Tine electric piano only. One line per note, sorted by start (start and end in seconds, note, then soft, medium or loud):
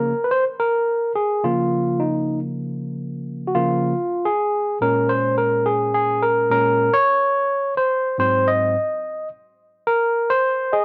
0.00 0.12 C#3 soft
0.00 0.12 F3 soft
0.00 0.13 A#3 medium
0.00 0.25 A#4 medium
0.24 0.31 B4 medium
0.31 0.44 C5 medium
0.60 1.12 A#4 medium
1.15 1.44 G#4 medium
1.43 3.53 C#3 medium
1.43 3.53 F3 soft
1.43 3.54 A#3 medium
1.43 2.02 F4 medium
2.00 2.39 D#4 medium
3.47 3.54 F#4 medium
3.54 3.93 C#3 medium
3.54 3.93 F3 soft
3.54 3.93 A#3 medium
3.54 4.27 F4 medium
4.25 4.78 G#4 medium
4.81 6.49 A#2 medium
4.81 6.50 G#3 medium
4.81 6.50 C#4 medium
4.81 5.10 A#4 medium
5.09 5.35 C5 medium
5.38 5.67 A#4 medium
5.66 5.93 G#4 medium
5.95 6.23 G#4 medium
6.23 6.50 A#4 medium
6.50 6.88 A#2 soft
6.50 6.89 G#3 soft
6.50 6.89 C#4 medium
6.50 6.94 A#4 medium
6.94 7.73 C#5 loud
7.77 8.16 C5 medium
8.18 8.75 G#2 medium
8.18 8.75 F#3 medium
8.18 8.76 C4 medium
8.18 8.48 C5 loud
8.48 9.28 D#5 loud
9.87 10.31 A#4 loud
10.30 10.74 C5 loud
10.73 10.85 G#4 medium